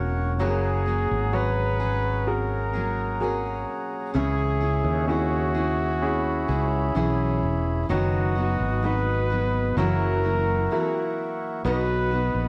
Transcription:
0.00 0.40 E1 medium
0.00 0.36 F#3 medium
0.00 0.40 F#3 medium
0.00 0.40 A#3 medium
0.00 0.37 C#4 soft
0.00 0.41 C#4 medium
0.00 0.37 F#4 soft
0.00 0.41 F#4 medium
0.00 0.37 A#4 soft
0.00 0.38 A#4 medium
0.00 7.85 C#5 medium
0.00 4.11 F#5 medium
0.00 0.38 C#6 medium
0.39 1.06 F#1 loud
0.39 0.86 F#2 medium
0.39 0.87 C#3 medium
0.39 4.11 F#3 medium
0.39 0.87 F#3 medium
0.39 0.87 A#3 medium
0.39 0.86 C#4 medium
0.39 7.86 G#4 medium
0.39 0.85 G#4 medium
0.39 1.36 G#4 medium
0.39 4.11 A#5 medium
0.86 1.32 F#3 soft
0.86 1.34 A#3 soft
0.86 1.34 C#4 medium
0.86 1.33 G#4 medium
1.11 3.64 G#1 medium
1.33 1.80 F#3 medium
1.33 1.79 C#4 medium
1.33 2.24 F#4 soft
1.33 2.24 G#4 soft
1.33 1.78 G#4 medium
1.33 2.30 B4 loud
1.33 2.24 C#5 soft
1.80 2.75 F#3 soft
1.80 2.74 C#4 soft
1.80 2.73 G#4 medium
2.27 3.18 F#4 soft
2.27 3.18 G#4 soft
2.27 3.18 A#4 medium
2.27 3.68 A#4 medium
2.73 3.19 F#3 soft
2.73 3.20 A#3 soft
2.73 3.21 C#4 medium
2.73 3.21 G#4 medium
3.20 4.14 F#3 medium
3.20 4.15 A#3 medium
3.20 4.15 C#4 medium
3.20 4.12 F#4 soft
3.20 4.12 G#4 soft
3.20 4.16 G#4 medium
3.20 4.12 A#4 soft
4.14 4.81 C#2 medium
4.14 4.61 C#3 medium
4.14 7.86 C#3 medium
4.14 4.61 E3 medium
4.14 4.62 C#4 medium
4.14 4.61 E4 medium
4.14 5.05 G#4 loud
4.14 4.59 G#4 medium
4.14 7.86 E5 medium
4.14 6.01 C#6 medium
4.61 5.08 C#4 soft
4.61 5.09 E4 soft
4.61 5.08 G#4 medium
4.84 6.45 D#2 medium
5.08 5.99 C#4 soft
5.08 5.56 C#4 medium
5.08 5.99 E4 soft
5.08 5.55 E4 medium
5.08 7.39 F#4 loud
5.08 5.99 G#4 soft
5.08 5.53 G#4 medium
5.55 6.50 C#4 soft
5.55 6.49 E4 soft
5.55 6.47 G#4 medium
6.02 6.93 C#4 soft
6.02 6.93 E4 soft
6.02 6.93 G#4 medium
6.02 7.88 B5 medium
6.48 6.93 C#2 medium
6.48 6.95 C#4 soft
6.48 6.96 E4 medium
6.48 6.96 G#4 medium
6.95 7.39 B1 medium
6.95 7.89 E3 medium
6.95 7.86 C#4 soft
6.95 7.90 C#4 medium
6.95 7.87 E4 soft
6.95 7.90 E4 medium
6.95 7.87 G#4 soft
6.95 7.91 G#4 medium
7.43 7.86 E1 medium
7.89 8.56 F#1 loud
7.89 8.36 F#2 medium
7.89 8.36 D#3 medium
7.89 9.73 F#3 medium
7.89 8.37 F#3 medium
7.89 8.36 B3 medium
7.89 8.35 D#4 medium
7.89 8.34 F#4 medium
7.89 8.86 F#4 loud
7.89 9.76 B4 medium
7.89 9.76 D#5 medium
7.89 11.61 F#5 medium
7.89 9.75 D#6 medium
8.35 8.81 F#3 soft
8.35 8.83 B3 soft
8.35 8.83 D#4 medium
8.35 8.83 F#4 medium
8.60 9.73 G#1 medium
8.82 9.30 F#3 medium
8.82 9.74 B3 soft
8.82 9.30 B3 medium
8.82 9.75 D#4 soft
8.82 9.30 D#4 medium
8.82 9.75 F#4 medium
8.82 9.29 F#4 medium
8.82 9.77 B4 loud
9.30 9.78 F#3 soft
9.30 9.78 B3 soft
9.30 9.78 D#4 medium
9.30 9.77 F#4 soft
9.77 10.67 F#1 loud
9.77 10.24 F#2 medium
9.77 10.24 C#3 medium
9.77 10.25 E3 medium
9.77 11.61 F#3 medium
9.77 10.25 A#3 medium
9.77 10.23 E4 medium
9.77 10.22 F#4 medium
9.77 11.63 A#4 medium
9.77 11.14 A#4 loud
9.77 11.63 E5 medium
9.77 11.63 C#6 medium
10.23 10.69 E3 soft
10.23 10.70 A#3 soft
10.23 10.71 E4 soft
10.23 10.71 F#4 medium
10.70 11.64 E3 medium
10.70 11.65 A#3 medium
10.70 11.62 E4 soft
10.70 11.66 E4 medium
10.70 11.63 F#4 soft
10.70 11.66 F#4 medium
10.70 11.62 A#4 soft
11.64 12.31 B1 loud
11.64 12.11 B2 medium
11.64 12.12 F#3 medium
11.64 12.48 B3 medium
11.64 12.12 B3 medium
11.64 12.12 D#4 medium
11.64 12.10 F#4 medium
11.64 12.48 B4 medium
11.64 12.48 B4 loud
11.64 12.48 D#5 medium
11.64 12.48 F#5 medium
11.64 12.48 D#6 medium
12.11 12.48 B3 soft
12.11 12.48 D#4 soft
12.11 12.48 F#4 medium
12.34 12.48 A#1 medium

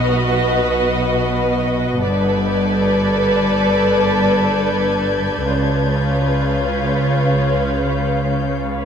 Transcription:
0.00 1.98 B1 medium
0.00 1.98 B2 soft
0.00 1.97 F#4 soft
0.00 1.97 B4 soft
0.00 1.98 B4 soft
0.00 1.97 D#5 soft
0.00 1.98 D#5 soft
0.00 1.97 F#5 soft
0.00 1.56 D#6 soft
0.00 1.56 F6 soft
2.02 5.44 G1 soft
2.02 5.44 G2 medium
2.02 5.44 A4 soft
2.02 5.44 B4 soft
2.02 5.44 B4 medium
2.02 5.44 D5 medium
2.02 5.48 D5 soft
2.02 5.48 A5 soft
2.02 8.56 G6 soft
2.02 7.68 G#6 soft
5.47 8.79 C#2 soft
5.47 8.79 C#3 soft
5.47 8.79 F4 soft
5.47 8.79 B4 soft
5.47 8.85 B4 soft
5.47 8.85 C#5 soft
5.47 8.79 C#5 soft
5.47 8.85 F5 soft

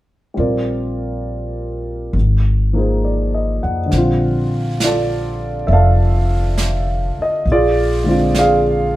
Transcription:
0.34 2.10 A#1 medium
0.34 2.13 G3 soft
0.34 2.14 C4 soft
0.34 2.14 F4 soft
0.39 2.15 A#4 soft
0.39 2.15 D5 soft
2.13 3.58 G#1 medium
2.73 3.91 F3 soft
2.73 3.91 A#3 soft
2.73 3.92 D#4 soft
2.73 3.92 G#4 soft
2.78 3.93 C5 soft
3.05 3.60 D5 soft
3.34 3.79 D#5 soft
3.63 3.90 F2 soft
3.63 4.08 F#5 soft
3.86 7.42 D3 soft
3.90 5.65 A#1 medium
3.90 7.45 G3 soft
3.90 7.46 C4 soft
3.90 brush sweep soft
3.90 snare soft
3.97 4.83 F4 soft
4.80 6.55 F4 soft
4.80 5.68 D5 medium
4.80 snare soft
4.80 hi-hat pedal soft
4.85 5.72 A4 soft
5.67 7.13 F1 medium
5.67 5.70 E5 medium
5.67 brush sweep soft
5.72 7.43 A4 medium
5.72 7.43 D5 soft
5.72 7.23 F5 medium
6.58 snare soft
6.58 hi-hat pedal soft
7.19 7.49 D#5 medium
7.19 muted upright bass stroke soft
7.46 8.96 A#1 medium
7.46 brush sweep soft
7.51 8.07 F4 medium
7.51 8.37 G#4 medium
7.51 8.33 D5 medium
8.04 8.96 D3 soft
8.04 8.96 G#3 soft
8.04 8.96 C4 soft
8.09 8.96 F4 soft
8.35 8.96 D5 medium
8.35 snare soft
8.35 hi-hat pedal soft
8.39 8.96 G#4 medium
8.39 8.96 F5 medium

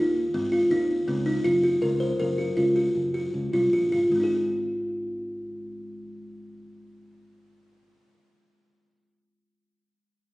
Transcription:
0.00 0.26 D#2 medium
0.00 0.19 D#4 medium
0.34 0.63 G#1 medium
0.34 0.45 C4 medium
0.52 0.63 F4 soft
0.70 1.00 D#2 medium
0.70 0.93 D#4 medium
1.08 1.37 C#2 medium
1.08 1.18 C4 medium
1.26 1.37 D#4 medium
1.44 1.74 F#1 medium
1.44 1.55 F4 medium
1.63 1.74 F#4 medium
1.82 2.11 C#2 medium
1.82 1.93 A#4 medium
2.00 2.11 C5 medium
2.19 2.49 F#1 medium
2.19 2.30 A#4 medium
2.38 2.49 F#4 soft
2.57 2.87 C#2 medium
2.57 2.68 F4 soft
2.76 2.98 F#4 soft
2.95 3.25 F#1 medium
3.14 3.37 F#4 soft
3.34 3.49 C#2 medium
3.53 3.71 C2 medium
3.53 3.65 F4 soft
3.73 3.91 A#1 soft
3.73 3.84 F#4 medium
3.92 4.10 G#1 soft
3.92 4.04 F4 medium
4.11 7.99 G#1 medium
4.11 7.99 G#3 soft
4.16 8.03 C4 soft
4.20 8.07 D#4 soft
4.20 8.11 G#4 soft

